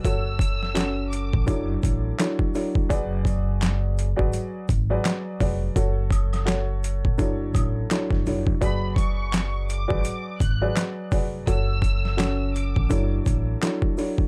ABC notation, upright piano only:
X:1
M:4/4
L:1/16
Q:"Swing 16ths" 1/4=84
K:Bdor
V:1 name="Upright piano"
[FAc]4 [CFA]4 [F,DEAc]4 [F,DEAc]2 [F,DEAc]2 | [F,FGBd]6 z [F,FGBd]3 z [F,FGBd]3 [F,FGBd]2 | [FAc]4 [FAc]4 [F,DEAc]4 [F,DEAc]2 [F,DEAc]2 | [F,FGBd]6 z [F,FGBd]3 z [F,FGBd]3 [F,FGBd]2 |
[FAc]4 [CFA]4 [F,DEAc]4 [F,DEAc]2 [F,DEAc]2 |]